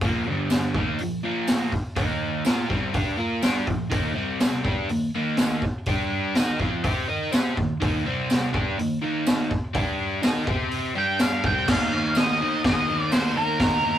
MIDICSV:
0, 0, Header, 1, 5, 480
1, 0, Start_track
1, 0, Tempo, 487013
1, 19, Time_signature, 4, 2, 24, 8
1, 9138, Tempo, 480384
1, 13848, End_track
2, 0, Start_track
2, 0, Title_t, "Lead electric guitar"
2, 0, Program_c, 0, 29
2, 10848, Note_on_c, 0, 79, 101
2, 11073, Note_off_c, 0, 79, 0
2, 11077, Note_on_c, 0, 77, 92
2, 11320, Note_off_c, 0, 77, 0
2, 11326, Note_on_c, 0, 79, 97
2, 11562, Note_off_c, 0, 79, 0
2, 11566, Note_on_c, 0, 77, 99
2, 12036, Note_on_c, 0, 75, 88
2, 12050, Note_off_c, 0, 77, 0
2, 12477, Note_off_c, 0, 75, 0
2, 12516, Note_on_c, 0, 75, 101
2, 12845, Note_off_c, 0, 75, 0
2, 12845, Note_on_c, 0, 74, 101
2, 12955, Note_off_c, 0, 74, 0
2, 12987, Note_on_c, 0, 72, 84
2, 13222, Note_on_c, 0, 70, 75
2, 13231, Note_off_c, 0, 72, 0
2, 13848, Note_off_c, 0, 70, 0
2, 13848, End_track
3, 0, Start_track
3, 0, Title_t, "Overdriven electric guitar"
3, 0, Program_c, 1, 29
3, 32, Note_on_c, 1, 46, 89
3, 44, Note_on_c, 1, 53, 102
3, 44, Note_on_c, 1, 58, 96
3, 264, Note_off_c, 1, 58, 0
3, 273, Note_on_c, 1, 43, 95
3, 282, Note_off_c, 1, 46, 0
3, 282, Note_on_c, 1, 50, 99
3, 283, Note_off_c, 1, 53, 0
3, 283, Note_on_c, 1, 55, 104
3, 738, Note_off_c, 1, 43, 0
3, 743, Note_off_c, 1, 50, 0
3, 744, Note_off_c, 1, 55, 0
3, 748, Note_on_c, 1, 51, 91
3, 761, Note_on_c, 1, 58, 86
3, 766, Note_on_c, 1, 63, 92
3, 976, Note_off_c, 1, 51, 0
3, 983, Note_off_c, 1, 58, 0
3, 985, Note_off_c, 1, 63, 0
3, 997, Note_on_c, 1, 46, 64
3, 1002, Note_on_c, 1, 53, 65
3, 1180, Note_off_c, 1, 46, 0
3, 1182, Note_off_c, 1, 53, 0
3, 1218, Note_on_c, 1, 46, 85
3, 1233, Note_on_c, 1, 53, 92
3, 1233, Note_on_c, 1, 58, 102
3, 1688, Note_off_c, 1, 46, 0
3, 1699, Note_off_c, 1, 53, 0
3, 1699, Note_off_c, 1, 58, 0
3, 1935, Note_on_c, 1, 51, 94
3, 1943, Note_on_c, 1, 58, 96
3, 1953, Note_on_c, 1, 63, 96
3, 2411, Note_off_c, 1, 51, 0
3, 2414, Note_off_c, 1, 58, 0
3, 2419, Note_off_c, 1, 63, 0
3, 2425, Note_on_c, 1, 58, 77
3, 2426, Note_on_c, 1, 65, 95
3, 2437, Note_on_c, 1, 70, 97
3, 2653, Note_off_c, 1, 58, 0
3, 2656, Note_off_c, 1, 65, 0
3, 2657, Note_on_c, 1, 48, 79
3, 2657, Note_on_c, 1, 55, 92
3, 2662, Note_off_c, 1, 70, 0
3, 2667, Note_on_c, 1, 60, 96
3, 2889, Note_off_c, 1, 55, 0
3, 2892, Note_off_c, 1, 48, 0
3, 2897, Note_off_c, 1, 60, 0
3, 2901, Note_on_c, 1, 55, 88
3, 2905, Note_on_c, 1, 62, 89
3, 2908, Note_on_c, 1, 67, 94
3, 3123, Note_off_c, 1, 55, 0
3, 3127, Note_on_c, 1, 58, 83
3, 3129, Note_off_c, 1, 62, 0
3, 3133, Note_on_c, 1, 65, 89
3, 3137, Note_off_c, 1, 67, 0
3, 3149, Note_on_c, 1, 70, 102
3, 3367, Note_off_c, 1, 58, 0
3, 3370, Note_off_c, 1, 65, 0
3, 3376, Note_on_c, 1, 55, 88
3, 3378, Note_off_c, 1, 70, 0
3, 3383, Note_on_c, 1, 62, 87
3, 3386, Note_on_c, 1, 67, 95
3, 3612, Note_off_c, 1, 55, 0
3, 3614, Note_on_c, 1, 46, 60
3, 3615, Note_off_c, 1, 62, 0
3, 3617, Note_off_c, 1, 67, 0
3, 3623, Note_on_c, 1, 53, 65
3, 3810, Note_off_c, 1, 46, 0
3, 3815, Note_off_c, 1, 53, 0
3, 3848, Note_on_c, 1, 51, 82
3, 3859, Note_on_c, 1, 58, 98
3, 3866, Note_on_c, 1, 63, 102
3, 4087, Note_off_c, 1, 51, 0
3, 4089, Note_off_c, 1, 58, 0
3, 4091, Note_on_c, 1, 48, 91
3, 4093, Note_on_c, 1, 55, 99
3, 4094, Note_off_c, 1, 63, 0
3, 4098, Note_on_c, 1, 60, 96
3, 4560, Note_off_c, 1, 55, 0
3, 4570, Note_off_c, 1, 48, 0
3, 4572, Note_on_c, 1, 55, 89
3, 4573, Note_off_c, 1, 60, 0
3, 4585, Note_on_c, 1, 62, 93
3, 4592, Note_on_c, 1, 67, 98
3, 4810, Note_off_c, 1, 55, 0
3, 4817, Note_off_c, 1, 62, 0
3, 4820, Note_off_c, 1, 67, 0
3, 4827, Note_on_c, 1, 51, 59
3, 4830, Note_on_c, 1, 58, 71
3, 5017, Note_off_c, 1, 51, 0
3, 5019, Note_off_c, 1, 58, 0
3, 5074, Note_on_c, 1, 51, 88
3, 5080, Note_on_c, 1, 58, 92
3, 5086, Note_on_c, 1, 63, 86
3, 5542, Note_off_c, 1, 51, 0
3, 5545, Note_off_c, 1, 58, 0
3, 5547, Note_off_c, 1, 63, 0
3, 5795, Note_on_c, 1, 55, 90
3, 5802, Note_on_c, 1, 62, 97
3, 5805, Note_on_c, 1, 67, 109
3, 6262, Note_off_c, 1, 55, 0
3, 6266, Note_off_c, 1, 62, 0
3, 6267, Note_off_c, 1, 67, 0
3, 6274, Note_on_c, 1, 70, 88
3, 6275, Note_on_c, 1, 63, 87
3, 6284, Note_on_c, 1, 75, 90
3, 6501, Note_off_c, 1, 70, 0
3, 6502, Note_off_c, 1, 63, 0
3, 6506, Note_off_c, 1, 75, 0
3, 6511, Note_on_c, 1, 60, 89
3, 6512, Note_on_c, 1, 53, 93
3, 6524, Note_on_c, 1, 65, 99
3, 6726, Note_off_c, 1, 60, 0
3, 6738, Note_off_c, 1, 65, 0
3, 6738, Note_on_c, 1, 60, 85
3, 6741, Note_off_c, 1, 53, 0
3, 6742, Note_on_c, 1, 67, 88
3, 6756, Note_on_c, 1, 72, 91
3, 6973, Note_off_c, 1, 60, 0
3, 6975, Note_off_c, 1, 67, 0
3, 6980, Note_on_c, 1, 63, 77
3, 6982, Note_off_c, 1, 72, 0
3, 6989, Note_on_c, 1, 70, 90
3, 6992, Note_on_c, 1, 75, 105
3, 7207, Note_off_c, 1, 63, 0
3, 7211, Note_on_c, 1, 60, 84
3, 7218, Note_off_c, 1, 70, 0
3, 7220, Note_off_c, 1, 75, 0
3, 7222, Note_on_c, 1, 67, 90
3, 7224, Note_on_c, 1, 72, 87
3, 7449, Note_off_c, 1, 60, 0
3, 7453, Note_on_c, 1, 51, 58
3, 7455, Note_off_c, 1, 67, 0
3, 7456, Note_off_c, 1, 72, 0
3, 7457, Note_on_c, 1, 58, 62
3, 7650, Note_off_c, 1, 51, 0
3, 7651, Note_off_c, 1, 58, 0
3, 7690, Note_on_c, 1, 51, 91
3, 7701, Note_on_c, 1, 58, 101
3, 7709, Note_on_c, 1, 63, 99
3, 7928, Note_off_c, 1, 51, 0
3, 7934, Note_off_c, 1, 58, 0
3, 7934, Note_on_c, 1, 48, 102
3, 7938, Note_off_c, 1, 63, 0
3, 7948, Note_on_c, 1, 55, 96
3, 7955, Note_on_c, 1, 60, 101
3, 8395, Note_off_c, 1, 55, 0
3, 8403, Note_off_c, 1, 60, 0
3, 8406, Note_on_c, 1, 55, 85
3, 8407, Note_on_c, 1, 62, 95
3, 8409, Note_off_c, 1, 48, 0
3, 8420, Note_on_c, 1, 67, 99
3, 8645, Note_off_c, 1, 55, 0
3, 8646, Note_off_c, 1, 62, 0
3, 8652, Note_off_c, 1, 67, 0
3, 8652, Note_on_c, 1, 51, 59
3, 8658, Note_on_c, 1, 58, 72
3, 8847, Note_off_c, 1, 51, 0
3, 8850, Note_off_c, 1, 58, 0
3, 8885, Note_on_c, 1, 51, 92
3, 8901, Note_on_c, 1, 58, 94
3, 8905, Note_on_c, 1, 63, 93
3, 9365, Note_off_c, 1, 51, 0
3, 9373, Note_off_c, 1, 58, 0
3, 9375, Note_off_c, 1, 63, 0
3, 9603, Note_on_c, 1, 55, 88
3, 9616, Note_on_c, 1, 62, 98
3, 9625, Note_on_c, 1, 67, 102
3, 10082, Note_off_c, 1, 55, 0
3, 10086, Note_on_c, 1, 63, 85
3, 10093, Note_off_c, 1, 62, 0
3, 10097, Note_on_c, 1, 70, 97
3, 10099, Note_off_c, 1, 67, 0
3, 10103, Note_on_c, 1, 75, 93
3, 10328, Note_off_c, 1, 63, 0
3, 10332, Note_on_c, 1, 60, 90
3, 10335, Note_off_c, 1, 70, 0
3, 10337, Note_off_c, 1, 75, 0
3, 10343, Note_on_c, 1, 67, 95
3, 10356, Note_on_c, 1, 72, 100
3, 10812, Note_off_c, 1, 67, 0
3, 10813, Note_off_c, 1, 60, 0
3, 10817, Note_on_c, 1, 55, 80
3, 10817, Note_on_c, 1, 62, 83
3, 10820, Note_off_c, 1, 72, 0
3, 10824, Note_on_c, 1, 67, 100
3, 11296, Note_off_c, 1, 55, 0
3, 11296, Note_off_c, 1, 62, 0
3, 11299, Note_off_c, 1, 67, 0
3, 11304, Note_on_c, 1, 48, 74
3, 11316, Note_on_c, 1, 55, 89
3, 11322, Note_on_c, 1, 60, 92
3, 11538, Note_off_c, 1, 48, 0
3, 11542, Note_on_c, 1, 51, 88
3, 11543, Note_off_c, 1, 55, 0
3, 11547, Note_on_c, 1, 58, 99
3, 11548, Note_off_c, 1, 60, 0
3, 11559, Note_on_c, 1, 63, 103
3, 11792, Note_off_c, 1, 51, 0
3, 11796, Note_on_c, 1, 51, 92
3, 11798, Note_off_c, 1, 58, 0
3, 11802, Note_off_c, 1, 63, 0
3, 11802, Note_on_c, 1, 58, 88
3, 11806, Note_on_c, 1, 63, 88
3, 12026, Note_off_c, 1, 51, 0
3, 12030, Note_on_c, 1, 51, 85
3, 12033, Note_off_c, 1, 58, 0
3, 12037, Note_on_c, 1, 58, 86
3, 12044, Note_off_c, 1, 63, 0
3, 12048, Note_on_c, 1, 63, 97
3, 12269, Note_off_c, 1, 51, 0
3, 12273, Note_on_c, 1, 51, 79
3, 12275, Note_off_c, 1, 58, 0
3, 12279, Note_off_c, 1, 63, 0
3, 12279, Note_on_c, 1, 58, 91
3, 12283, Note_on_c, 1, 63, 84
3, 12504, Note_off_c, 1, 51, 0
3, 12516, Note_on_c, 1, 51, 98
3, 12523, Note_off_c, 1, 58, 0
3, 12526, Note_off_c, 1, 63, 0
3, 12527, Note_on_c, 1, 58, 93
3, 12538, Note_on_c, 1, 63, 101
3, 12744, Note_off_c, 1, 51, 0
3, 12754, Note_off_c, 1, 63, 0
3, 12755, Note_off_c, 1, 58, 0
3, 12756, Note_on_c, 1, 51, 83
3, 12759, Note_on_c, 1, 58, 90
3, 12766, Note_on_c, 1, 63, 88
3, 12973, Note_off_c, 1, 51, 0
3, 12985, Note_on_c, 1, 51, 81
3, 12987, Note_off_c, 1, 58, 0
3, 12991, Note_off_c, 1, 63, 0
3, 12991, Note_on_c, 1, 58, 88
3, 13003, Note_on_c, 1, 63, 93
3, 13203, Note_off_c, 1, 51, 0
3, 13211, Note_off_c, 1, 58, 0
3, 13215, Note_on_c, 1, 51, 79
3, 13215, Note_on_c, 1, 58, 86
3, 13218, Note_off_c, 1, 63, 0
3, 13230, Note_on_c, 1, 63, 83
3, 13438, Note_off_c, 1, 51, 0
3, 13450, Note_on_c, 1, 51, 81
3, 13452, Note_off_c, 1, 63, 0
3, 13460, Note_off_c, 1, 58, 0
3, 13464, Note_on_c, 1, 58, 89
3, 13464, Note_on_c, 1, 63, 92
3, 13674, Note_off_c, 1, 51, 0
3, 13686, Note_on_c, 1, 51, 83
3, 13692, Note_off_c, 1, 63, 0
3, 13697, Note_off_c, 1, 58, 0
3, 13701, Note_on_c, 1, 58, 100
3, 13704, Note_on_c, 1, 63, 102
3, 13848, Note_off_c, 1, 51, 0
3, 13848, Note_off_c, 1, 58, 0
3, 13848, Note_off_c, 1, 63, 0
3, 13848, End_track
4, 0, Start_track
4, 0, Title_t, "Muted overdriven electric guitar strokes"
4, 1700, Note_on_c, 9, 29, 50
4, 1798, Note_off_c, 9, 29, 0
4, 5565, Note_on_c, 9, 29, 52
4, 5664, Note_off_c, 9, 29, 0
4, 9383, Note_on_c, 9, 29, 55
4, 9483, Note_off_c, 9, 29, 0
4, 13848, End_track
5, 0, Start_track
5, 0, Title_t, "Drums"
5, 11, Note_on_c, 9, 46, 50
5, 14, Note_on_c, 9, 36, 104
5, 110, Note_off_c, 9, 46, 0
5, 112, Note_off_c, 9, 36, 0
5, 492, Note_on_c, 9, 54, 85
5, 495, Note_on_c, 9, 46, 54
5, 499, Note_on_c, 9, 38, 103
5, 591, Note_off_c, 9, 54, 0
5, 593, Note_off_c, 9, 46, 0
5, 597, Note_off_c, 9, 38, 0
5, 734, Note_on_c, 9, 36, 101
5, 833, Note_off_c, 9, 36, 0
5, 971, Note_on_c, 9, 46, 55
5, 1069, Note_off_c, 9, 46, 0
5, 1454, Note_on_c, 9, 46, 60
5, 1454, Note_on_c, 9, 54, 102
5, 1458, Note_on_c, 9, 38, 109
5, 1552, Note_off_c, 9, 54, 0
5, 1553, Note_off_c, 9, 46, 0
5, 1556, Note_off_c, 9, 38, 0
5, 1698, Note_on_c, 9, 36, 79
5, 1797, Note_off_c, 9, 36, 0
5, 1932, Note_on_c, 9, 46, 54
5, 1937, Note_on_c, 9, 36, 109
5, 2031, Note_off_c, 9, 46, 0
5, 2036, Note_off_c, 9, 36, 0
5, 2412, Note_on_c, 9, 54, 97
5, 2420, Note_on_c, 9, 46, 55
5, 2424, Note_on_c, 9, 38, 113
5, 2510, Note_off_c, 9, 54, 0
5, 2519, Note_off_c, 9, 46, 0
5, 2523, Note_off_c, 9, 38, 0
5, 2662, Note_on_c, 9, 36, 81
5, 2760, Note_off_c, 9, 36, 0
5, 2894, Note_on_c, 9, 46, 55
5, 2901, Note_on_c, 9, 36, 112
5, 2992, Note_off_c, 9, 46, 0
5, 3000, Note_off_c, 9, 36, 0
5, 3375, Note_on_c, 9, 54, 103
5, 3376, Note_on_c, 9, 46, 56
5, 3380, Note_on_c, 9, 38, 115
5, 3474, Note_off_c, 9, 46, 0
5, 3474, Note_off_c, 9, 54, 0
5, 3478, Note_off_c, 9, 38, 0
5, 3620, Note_on_c, 9, 36, 81
5, 3718, Note_off_c, 9, 36, 0
5, 3857, Note_on_c, 9, 46, 55
5, 3859, Note_on_c, 9, 36, 112
5, 3955, Note_off_c, 9, 46, 0
5, 3958, Note_off_c, 9, 36, 0
5, 4336, Note_on_c, 9, 46, 50
5, 4340, Note_on_c, 9, 38, 113
5, 4343, Note_on_c, 9, 54, 101
5, 4435, Note_off_c, 9, 46, 0
5, 4439, Note_off_c, 9, 38, 0
5, 4441, Note_off_c, 9, 54, 0
5, 4579, Note_on_c, 9, 36, 97
5, 4678, Note_off_c, 9, 36, 0
5, 4822, Note_on_c, 9, 46, 53
5, 4920, Note_off_c, 9, 46, 0
5, 5292, Note_on_c, 9, 46, 55
5, 5296, Note_on_c, 9, 38, 114
5, 5306, Note_on_c, 9, 54, 95
5, 5391, Note_off_c, 9, 46, 0
5, 5395, Note_off_c, 9, 38, 0
5, 5405, Note_off_c, 9, 54, 0
5, 5539, Note_on_c, 9, 36, 79
5, 5638, Note_off_c, 9, 36, 0
5, 5773, Note_on_c, 9, 46, 58
5, 5781, Note_on_c, 9, 36, 103
5, 5872, Note_off_c, 9, 46, 0
5, 5879, Note_off_c, 9, 36, 0
5, 6259, Note_on_c, 9, 46, 58
5, 6263, Note_on_c, 9, 38, 113
5, 6277, Note_on_c, 9, 54, 97
5, 6358, Note_off_c, 9, 46, 0
5, 6362, Note_off_c, 9, 38, 0
5, 6375, Note_off_c, 9, 54, 0
5, 6502, Note_on_c, 9, 36, 81
5, 6600, Note_off_c, 9, 36, 0
5, 6739, Note_on_c, 9, 46, 60
5, 6743, Note_on_c, 9, 36, 104
5, 6838, Note_off_c, 9, 46, 0
5, 6841, Note_off_c, 9, 36, 0
5, 7219, Note_on_c, 9, 54, 104
5, 7225, Note_on_c, 9, 46, 57
5, 7229, Note_on_c, 9, 38, 115
5, 7318, Note_off_c, 9, 54, 0
5, 7323, Note_off_c, 9, 46, 0
5, 7327, Note_off_c, 9, 38, 0
5, 7465, Note_on_c, 9, 36, 80
5, 7563, Note_off_c, 9, 36, 0
5, 7705, Note_on_c, 9, 36, 115
5, 7711, Note_on_c, 9, 46, 52
5, 7803, Note_off_c, 9, 36, 0
5, 7810, Note_off_c, 9, 46, 0
5, 8179, Note_on_c, 9, 54, 99
5, 8184, Note_on_c, 9, 46, 55
5, 8187, Note_on_c, 9, 38, 103
5, 8278, Note_off_c, 9, 54, 0
5, 8282, Note_off_c, 9, 46, 0
5, 8286, Note_off_c, 9, 38, 0
5, 8419, Note_on_c, 9, 36, 99
5, 8517, Note_off_c, 9, 36, 0
5, 8664, Note_on_c, 9, 46, 53
5, 8763, Note_off_c, 9, 46, 0
5, 9132, Note_on_c, 9, 54, 110
5, 9133, Note_on_c, 9, 46, 59
5, 9137, Note_on_c, 9, 38, 115
5, 9232, Note_off_c, 9, 54, 0
5, 9233, Note_off_c, 9, 46, 0
5, 9237, Note_off_c, 9, 38, 0
5, 9375, Note_on_c, 9, 36, 82
5, 9475, Note_off_c, 9, 36, 0
5, 9613, Note_on_c, 9, 46, 54
5, 9614, Note_on_c, 9, 36, 113
5, 9713, Note_off_c, 9, 46, 0
5, 9714, Note_off_c, 9, 36, 0
5, 10096, Note_on_c, 9, 46, 58
5, 10096, Note_on_c, 9, 54, 104
5, 10100, Note_on_c, 9, 38, 107
5, 10196, Note_off_c, 9, 46, 0
5, 10196, Note_off_c, 9, 54, 0
5, 10200, Note_off_c, 9, 38, 0
5, 10338, Note_on_c, 9, 36, 103
5, 10437, Note_off_c, 9, 36, 0
5, 10579, Note_on_c, 9, 46, 61
5, 10679, Note_off_c, 9, 46, 0
5, 11055, Note_on_c, 9, 46, 59
5, 11059, Note_on_c, 9, 38, 106
5, 11063, Note_on_c, 9, 54, 107
5, 11155, Note_off_c, 9, 46, 0
5, 11159, Note_off_c, 9, 38, 0
5, 11163, Note_off_c, 9, 54, 0
5, 11303, Note_on_c, 9, 36, 111
5, 11403, Note_off_c, 9, 36, 0
5, 11543, Note_on_c, 9, 49, 115
5, 11544, Note_on_c, 9, 36, 110
5, 11547, Note_on_c, 9, 38, 109
5, 11643, Note_off_c, 9, 49, 0
5, 11644, Note_off_c, 9, 36, 0
5, 11647, Note_off_c, 9, 38, 0
5, 12014, Note_on_c, 9, 54, 98
5, 12026, Note_on_c, 9, 46, 55
5, 12030, Note_on_c, 9, 38, 111
5, 12114, Note_off_c, 9, 54, 0
5, 12126, Note_off_c, 9, 46, 0
5, 12130, Note_off_c, 9, 38, 0
5, 12508, Note_on_c, 9, 36, 109
5, 12510, Note_on_c, 9, 46, 54
5, 12514, Note_on_c, 9, 38, 112
5, 12608, Note_off_c, 9, 36, 0
5, 12610, Note_off_c, 9, 46, 0
5, 12614, Note_off_c, 9, 38, 0
5, 12982, Note_on_c, 9, 54, 96
5, 12983, Note_on_c, 9, 46, 61
5, 12987, Note_on_c, 9, 38, 111
5, 13082, Note_off_c, 9, 54, 0
5, 13083, Note_off_c, 9, 46, 0
5, 13087, Note_off_c, 9, 38, 0
5, 13459, Note_on_c, 9, 46, 62
5, 13461, Note_on_c, 9, 36, 111
5, 13463, Note_on_c, 9, 38, 111
5, 13559, Note_off_c, 9, 46, 0
5, 13561, Note_off_c, 9, 36, 0
5, 13563, Note_off_c, 9, 38, 0
5, 13848, End_track
0, 0, End_of_file